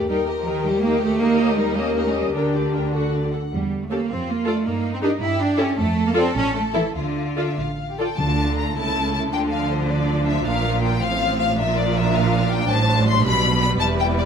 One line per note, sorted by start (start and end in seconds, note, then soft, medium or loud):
0.00 1.16 G4 soft
0.00 1.16 A#4 soft
0.09 2.35 D#2 soft
0.09 0.17 G3 medium
0.09 0.27 D#4 soft
0.09 0.64 A#4 medium
0.09 0.27 A#4 soft
0.09 0.27 G5 soft
0.28 0.47 G4 soft
0.28 0.47 D#5 soft
0.38 0.47 F3 soft
0.47 0.65 D#3 medium
0.47 0.65 D#4 soft
0.47 0.65 A#4 soft
0.47 0.65 G5 soft
0.65 0.84 G3 medium
0.65 0.84 G4 soft
0.65 1.21 G4 medium
0.65 0.84 D#5 soft
0.84 1.02 A#3 medium
0.84 1.01 D#4 soft
0.84 1.01 A#4 soft
0.84 1.01 G5 soft
1.01 1.20 A3 medium
1.01 1.21 G4 soft
1.01 1.20 D#5 soft
1.20 1.48 A#3 medium
1.20 1.77 D#4 medium
1.20 1.38 D#4 medium
1.20 1.73 G4 soft
1.20 1.73 A#4 medium
1.20 1.38 A#4 soft
1.20 1.38 D#5 soft
1.39 1.58 G4 soft
1.39 1.58 C#5 soft
1.39 1.58 D#5 soft
1.49 1.58 A3 medium
1.57 1.77 G3 medium
1.57 1.77 D#4 soft
1.57 1.77 A#4 soft
1.57 1.76 D#5 soft
1.76 2.05 A#3 medium
1.76 2.35 C#4 medium
1.76 1.96 G4 medium
1.76 2.34 G4 medium
1.76 2.34 A#4 medium
1.76 1.95 C#5 medium
1.76 1.96 D#5 medium
1.96 2.14 D#4 soft
1.96 2.14 A#4 soft
1.96 2.14 D#5 soft
2.05 2.09 A3 medium
2.14 2.34 G3 medium
2.14 2.35 G4 soft
2.14 2.34 C#5 soft
2.14 2.35 D#5 soft
2.34 3.32 D2 soft
2.34 3.31 D3 medium
2.34 2.53 D4 soft
2.34 3.22 D4 soft
2.34 2.93 G4 soft
2.34 2.53 A#4 soft
2.34 2.93 A#4 soft
2.34 2.53 G5 soft
2.54 2.74 G4 soft
2.54 2.74 D5 soft
2.73 2.94 D4 soft
2.73 2.94 A#4 soft
2.73 2.93 G5 soft
2.93 3.33 F#4 soft
2.93 3.21 F#4 soft
2.93 3.33 A4 soft
2.93 3.12 F#5 soft
3.13 3.33 D5 soft
3.23 3.27 G4 soft
3.31 3.41 A4 soft
3.31 3.52 F#5 soft
3.52 3.98 E2 medium
3.52 3.79 G3 medium
3.82 3.91 A3 soft
3.90 4.09 A#3 medium
3.90 3.97 C#4 soft
3.90 4.00 G4 soft
3.90 4.00 A4 soft
3.90 3.98 A4 soft
3.90 3.99 C#5 soft
4.09 4.55 F2 medium
4.09 4.28 C4 medium
4.09 4.62 F4 soft
4.27 4.47 A#3 medium
4.46 4.66 A3 medium
4.46 4.55 D4 soft
4.46 4.56 F4 soft
4.46 4.55 A4 soft
4.46 4.54 A4 soft
4.46 4.56 D5 soft
4.65 5.10 G2 medium
4.65 4.94 A#3 medium
4.65 5.20 D#4 soft
4.94 4.98 C4 medium
5.02 5.10 D4 medium
5.02 5.12 D#4 soft
5.02 5.10 D#4 medium
5.02 5.11 G4 soft
5.02 5.10 G4 medium
5.02 5.12 A#4 soft
5.21 5.66 G2 medium
5.21 5.39 E4 medium
5.21 5.78 G4 medium
5.40 5.59 D4 medium
5.58 5.77 C#4 medium
5.58 5.66 C#4 medium
5.58 5.67 E4 medium
5.58 5.67 A4 medium
5.58 5.66 A4 medium
5.58 5.67 C#5 medium
5.77 6.23 F2 medium
5.77 6.06 A3 medium
5.77 6.94 A4 medium
6.07 6.11 A#3 medium
6.14 6.35 C4 medium
6.14 6.23 D4 medium
6.14 6.24 F4 medium
6.14 6.24 A4 medium
6.14 6.23 A4 medium
6.14 6.25 D5 medium
6.35 6.83 A1 medium
6.35 6.55 C#4 medium
6.54 6.62 A3 medium
6.73 6.83 E3 medium
6.73 6.84 E4 medium
6.73 6.82 E4 soft
6.73 6.84 A4 medium
6.73 6.82 A4 medium
6.73 6.85 E5 medium
6.95 7.45 D2 medium
6.95 7.56 D3 medium
6.95 7.53 F4 soft
7.37 7.47 F4 soft
7.37 7.45 F4 soft
7.37 7.47 A4 soft
7.37 7.45 A4 soft
7.37 7.46 D5 soft
7.37 7.56 E5 medium
7.58 8.06 A1 soft
7.58 7.67 F4 soft
7.58 7.99 F5 soft
7.90 7.99 G4 soft
7.98 8.06 F4 soft
7.98 8.08 F4 soft
7.98 8.17 A4 soft
7.98 8.06 A4 soft
7.98 8.08 A4 soft
7.98 8.08 D5 soft
7.98 8.19 G5 medium
8.18 8.73 D2 medium
8.18 8.72 D3 medium
8.18 8.73 D3 medium
8.18 9.29 A3 soft
8.18 8.72 D4 soft
8.18 8.73 F4 soft
8.18 10.41 A4 medium
8.18 8.58 A5 medium
8.57 8.76 A#5 medium
8.76 9.32 C#2 soft
8.76 9.32 C#3 medium
8.76 9.29 E4 medium
8.76 9.30 E4 soft
8.76 9.13 A5 medium
9.14 9.21 A5 medium
9.32 10.43 D2 medium
9.32 10.43 D3 medium
9.32 11.53 F3 medium
9.32 10.97 D4 medium
9.32 11.53 F4 medium
9.32 9.40 G5 medium
9.52 9.71 F5 medium
9.71 9.90 C5 medium
9.89 10.26 D5 medium
10.26 10.45 E5 medium
10.45 11.00 A#1 medium
10.45 11.00 A#2 medium
10.45 10.97 A#4 medium
10.45 10.82 F5 medium
10.83 11.01 G5 medium
11.01 11.57 A1 medium
11.01 11.57 A2 medium
11.01 11.53 C4 medium
11.01 11.53 C5 medium
11.01 11.38 F5 loud
11.39 11.57 F5 medium
11.57 12.69 A#1 medium
11.57 12.69 A#2 medium
11.57 12.65 F3 medium
11.57 13.20 D4 medium
11.57 12.65 F4 medium
11.57 12.65 A#4 medium
11.57 11.75 E5 medium
11.77 11.95 D5 medium
11.96 12.14 E5 medium
12.15 12.51 F5 medium
12.51 12.69 G5 medium
12.68 13.23 A1 medium
12.68 13.23 A2 medium
12.68 13.20 F#3 medium
12.68 13.76 D4 medium
12.68 13.20 C5 medium
12.68 13.06 A5 medium
13.06 13.24 C6 medium
13.23 13.80 B1 medium
13.23 13.80 B2 medium
13.23 14.25 G3 medium
13.23 14.25 B3 medium
13.23 14.25 B4 medium
13.23 13.60 B5 loud
13.62 13.69 B5 loud
13.80 14.25 E1 medium
13.80 14.25 E2 medium
13.80 14.25 E4 medium
13.80 13.88 A5 loud
14.00 14.07 G5 medium
14.19 14.25 D5 medium